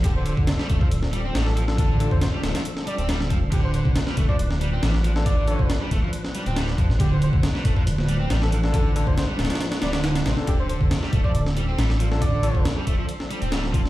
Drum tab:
HH |x---x---x---x---x---x---x---x---|x---x---x---x-x-x---x-x-x---x---|x---x---x---x---x---x---x---x---|x---x---x---x---x---x-x-x---x---|
SD |--------o-o-------o-----o-o---o-|--------o---o-o---o-----o-o-----|--------o-o-------o-----o-o---o-|--------o---------o-----o-o---o-|
BD |o-----o-----o-o-----------------|o-----o---------------------o---|o-----o-----o-o-----------------|o-----o-----o---------------o---|

HH |x---x---x---x---x---x---x---x---|x---x---x---xxxxx-x-x-x-x-x-x---|x---x---x---x---x---x---x---x---|x---x---x---x---x---x-x-x---x---|
SD |--------o-o-------o-----o-o---o-|--------o---ooooo-o-o-o-o-o-o-o-|--------o-o-------o-----o-o---o-|--------o---------o-----o-o---o-|
BD |o-----o-----o-o-----------------|o-----o-------------------------|o-----o-----o-o-----------------|o-----o-----o---------------o---|